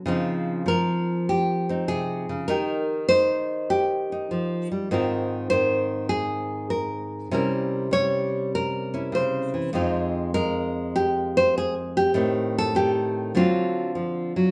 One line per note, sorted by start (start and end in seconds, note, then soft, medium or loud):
0.06 0.66 C#3 medium
0.06 0.65 F3 medium
0.06 1.69 C4 soft
0.06 1.70 D#4 soft
0.06 0.68 F4 soft
0.66 2.48 F3 medium
0.66 1.28 A#4 medium
1.29 1.88 G4 medium
1.69 2.49 C4 soft
1.69 2.49 D#4 soft
1.88 2.29 C3 medium
1.88 2.47 G#4 medium
2.29 2.48 C#3 medium
2.48 4.29 D#3 medium
2.48 3.09 D#4 soft
2.48 3.69 G4 soft
2.48 3.08 A#4 medium
3.09 4.10 D#4 medium
3.09 4.29 C5 loud
3.70 4.90 G4 medium
4.12 4.88 D#4 soft
4.31 4.71 F3 medium
4.72 4.90 G3 soft
4.91 7.29 G#2 medium
4.91 5.50 D#3 soft
4.91 7.32 C4 soft
4.91 7.30 F4 soft
4.91 5.49 A#4 soft
5.50 7.31 D#3 soft
5.50 6.09 C5 medium
6.09 6.70 G#4 medium
6.70 7.31 A#4 medium
7.31 9.70 C3 medium
7.31 7.91 G3 soft
7.31 8.92 C#4 soft
7.31 8.93 E4 soft
7.31 7.92 A#4 soft
7.91 9.53 G3 medium
7.91 8.52 C#5 loud
8.55 9.13 A#4 medium
8.94 9.70 C#4 soft
8.94 9.71 E4 soft
9.12 9.53 C#3 medium
9.12 9.74 C5 medium
9.54 9.73 E3 medium
9.73 12.14 F2 medium
9.73 10.33 G#3 medium
9.73 12.13 C4 medium
9.73 10.94 D#4 soft
9.73 10.34 F4 soft
10.34 12.12 G#3 medium
10.34 11.35 A#4 loud
10.96 11.96 G4 medium
11.37 11.55 C5 loud
11.58 11.74 G#4 medium
11.97 12.75 G4 medium
12.14 13.32 A2 medium
12.14 12.74 D#3 soft
12.14 13.33 C4 soft
12.58 13.36 A4 medium
12.75 13.35 D#3 medium
12.75 13.35 G4 medium
13.35 14.51 D3 medium
13.35 13.95 F#3 soft
13.35 14.51 C4 soft
13.35 14.51 D4 soft
13.35 14.51 F4 medium
13.95 14.36 F3 medium
14.36 14.51 F#3 medium